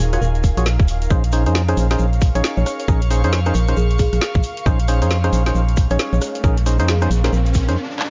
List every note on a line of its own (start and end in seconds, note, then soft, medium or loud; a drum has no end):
0.00 0.19 D#1 medium
0.00 1.96 D#4 medium
0.00 7.77 A#4 medium
0.00 7.77 F5 medium
0.00 1.72 G#5 medium
0.00 shaker medium
0.13 0.21 F4 medium
0.13 0.21 F#4 medium
0.13 0.21 G#4 medium
0.13 0.20 A#4 medium
0.13 0.21 C#5 medium
0.13 cross-stick medium
0.13 closed hi-hat medium
0.13 shaker soft
0.22 0.54 D#1 medium
0.22 0.66 A#4 medium
0.22 shaker medium
0.35 closed hi-hat soft
0.35 shaker soft
0.44 kick medium
0.44 open hi-hat loud
0.44 shaker medium
0.57 0.81 A#1 medium
0.57 0.66 F4 medium
0.57 0.66 F#4 medium
0.57 0.66 G#4 medium
0.57 0.66 C#5 medium
0.57 cross-stick soft
0.57 closed hi-hat medium
0.57 shaker soft
0.66 snare loud
0.66 shaker medium
0.80 1.08 D#1 medium
0.80 kick loud
0.80 shaker soft
0.88 open hi-hat medium
0.88 shaker medium
1.02 closed hi-hat medium
1.02 shaker soft
1.10 1.48 A#1 loud
1.10 1.23 C#4 medium
1.10 1.23 D#4 medium
1.10 1.23 G#4 medium
1.10 1.23 C5 medium
1.10 kick loud
1.10 shaker soft
1.24 closed hi-hat medium
1.24 shaker soft
1.32 1.44 C#4 medium
1.32 1.44 D#4 medium
1.32 1.44 G#4 medium
1.32 1.44 C5 medium
1.32 7.77 F5 medium
1.32 open hi-hat loud
1.32 shaker medium
1.46 1.75 F2 medium
1.46 1.62 C#4 medium
1.46 1.62 D#4 medium
1.46 1.62 G#4 medium
1.46 1.62 C5 medium
1.46 closed hi-hat medium
1.46 shaker soft
1.55 snare loud
1.55 shaker medium
1.69 1.88 C#4 medium
1.69 1.87 D#4 medium
1.69 1.88 G#4 medium
1.69 1.87 C5 loud
1.69 cross-stick medium
1.69 closed hi-hat medium
1.69 shaker soft
1.77 1.96 A#1 loud
1.77 open hi-hat medium
1.77 shaker medium
1.85 7.77 C#6 medium
1.91 2.06 C#4 medium
1.91 2.06 D#4 medium
1.91 2.06 G#4 medium
1.91 2.06 C5 medium
1.91 cross-stick medium
1.91 snare medium
1.91 closed hi-hat medium
1.91 shaker soft
1.99 2.31 A#1 medium
1.99 shaker medium
2.13 closed hi-hat soft
2.13 shaker soft
2.21 kick loud
2.21 open hi-hat loud
2.21 shaker medium
2.35 2.42 A#1 medium
2.35 2.86 C#4 medium
2.35 2.86 D#4 medium
2.35 2.86 G#4 medium
2.35 2.43 C#5 medium
2.35 2.86 C#5 loud
2.35 closed hi-hat medium
2.35 shaker soft
2.44 snare loud
2.44 shaker medium
2.57 2.65 A#1 medium
2.57 2.64 C#5 medium
2.57 shaker soft
2.66 2.75 C#5 medium
2.66 cross-stick medium
2.66 open hi-hat medium
2.66 shaker loud
2.79 2.85 C#5 medium
2.79 closed hi-hat medium
2.79 shaker soft
2.88 3.26 A#1 loud
2.88 3.01 C#4 medium
2.88 3.01 D#4 medium
2.88 3.01 G#4 medium
2.88 3.01 A#4 medium
2.88 kick loud
2.88 shaker medium
3.02 closed hi-hat medium
3.02 shaker soft
3.11 3.22 C#4 medium
3.11 3.22 D#4 medium
3.11 3.22 G#4 medium
3.11 3.22 C5 medium
3.11 open hi-hat loud
3.11 shaker medium
3.24 3.53 F2 medium
3.24 3.40 C#4 loud
3.24 3.40 D#4 medium
3.24 3.40 G#4 medium
3.24 3.40 C5 loud
3.24 closed hi-hat medium
3.24 shaker soft
3.32 snare loud
3.32 shaker medium
3.46 3.54 C#4 medium
3.46 3.55 D#4 medium
3.46 3.55 G#4 medium
3.46 3.52 A#4 medium
3.46 3.55 C5 loud
3.46 cross-stick medium
3.46 closed hi-hat medium
3.46 shaker soft
3.55 3.74 A#1 medium
3.55 3.64 A#4 medium
3.55 open hi-hat medium
3.55 shaker medium
3.67 3.77 C#4 medium
3.67 3.77 D#4 medium
3.67 3.77 G#4 medium
3.67 3.77 C5 medium
3.67 cross-stick medium
3.67 closed hi-hat medium
3.67 shaker soft
3.77 4.09 A#1 medium
3.77 3.90 G#4 medium
3.77 shaker medium
3.90 closed hi-hat soft
3.90 shaker soft
3.99 4.08 G#4 medium
3.99 kick medium
3.99 open hi-hat loud
3.99 shaker medium
4.13 4.20 A#1 medium
4.13 4.18 G#4 medium
4.13 cross-stick soft
4.13 closed hi-hat medium
4.13 shaker soft
4.21 snare loud
4.21 shaker medium
4.35 4.42 A#1 loud
4.35 kick loud
4.35 shaker soft
4.43 open hi-hat medium
4.43 shaker medium
4.57 closed hi-hat medium
4.57 shaker soft
4.66 5.03 A#1 loud
4.66 4.79 C#4 medium
4.66 4.79 D#4 medium
4.66 4.79 G#4 medium
4.66 4.79 C5 medium
4.66 kick loud
4.66 riser medium
4.66 shaker soft
4.80 closed hi-hat medium
4.80 shaker soft
4.88 5.00 C#4 medium
4.88 5.00 D#4 medium
4.88 5.00 G#4 medium
4.88 5.00 C5 medium
4.88 open hi-hat loud
4.88 shaker medium
5.02 5.30 F2 medium
5.02 5.17 C#4 medium
5.02 5.17 D#4 medium
5.02 5.17 G#4 medium
5.02 5.17 C5 medium
5.02 closed hi-hat medium
5.02 shaker soft
5.10 snare loud
5.10 shaker soft
5.24 5.43 C#4 medium
5.24 5.43 D#4 medium
5.24 5.43 G#4 medium
5.24 5.43 C5 loud
5.24 cross-stick medium
5.24 closed hi-hat medium
5.24 shaker soft
5.33 5.52 A#1 medium
5.33 open hi-hat loud
5.33 shaker medium
5.46 5.62 C#4 medium
5.46 5.62 D#4 medium
5.46 5.62 G#4 medium
5.46 5.62 C5 medium
5.46 cross-stick medium
5.46 snare medium
5.46 closed hi-hat medium
5.46 shaker soft
5.55 5.87 A#1 medium
5.55 shaker soft
5.69 closed hi-hat soft
5.69 shaker soft
5.77 kick loud
5.77 open hi-hat loud
5.77 shaker medium
5.90 5.98 A#1 medium
5.90 6.42 C#4 medium
5.90 6.42 D#4 medium
5.90 6.42 G#4 medium
5.90 6.42 C#5 loud
5.90 5.99 C#5 medium
5.90 closed hi-hat medium
5.90 shaker soft
5.99 snare loud
5.99 shaker medium
6.13 6.20 A#1 loud
6.13 6.20 C#5 loud
6.13 shaker soft
6.22 6.30 C#5 medium
6.22 cross-stick medium
6.22 open hi-hat loud
6.22 shaker medium
6.35 6.41 C#5 medium
6.35 closed hi-hat medium
6.35 shaker soft
6.44 6.81 A#1 loud
6.44 6.57 C#4 medium
6.44 6.57 D#4 medium
6.44 6.57 G#4 medium
6.44 6.57 A#4 medium
6.44 kick loud
6.44 shaker soft
6.57 closed hi-hat medium
6.57 shaker soft
6.66 6.78 C#4 medium
6.66 6.78 D#4 medium
6.66 6.78 G#4 medium
6.66 6.78 C5 medium
6.66 open hi-hat loud
6.66 shaker loud
6.79 7.08 F2 medium
6.79 6.95 C#4 loud
6.79 6.95 D#4 medium
6.79 6.95 G#4 medium
6.79 6.95 C5 loud
6.79 closed hi-hat medium
6.79 shaker soft
6.88 7.01 G#4 medium
6.88 snare loud
6.88 shaker medium
7.01 7.10 C#4 medium
7.01 7.10 D#4 medium
7.01 7.10 G#4 medium
7.01 7.10 C5 loud
7.01 cross-stick medium
7.01 closed hi-hat medium
7.01 shaker soft
7.11 7.30 A#1 medium
7.11 open hi-hat loud
7.11 shaker medium
7.24 7.32 C#4 medium
7.24 7.32 D#4 medium
7.24 7.32 G#4 medium
7.24 7.31 A#4 loud
7.24 7.32 C5 medium
7.24 cross-stick medium
7.24 snare medium
7.24 closed hi-hat medium
7.24 shaker soft
7.33 7.70 A#1 medium
7.33 7.77 A#4 medium
7.33 shaker soft
7.46 closed hi-hat soft
7.46 shaker soft
7.54 kick medium
7.54 open hi-hat loud
7.54 shaker medium
7.68 7.77 F2 medium
7.68 7.77 C#4 medium
7.68 7.77 D#4 medium
7.68 7.77 G#4 medium
7.68 7.77 C5 medium
7.68 cross-stick soft
7.68 closed hi-hat medium
7.68 shaker soft
7.99 clap medium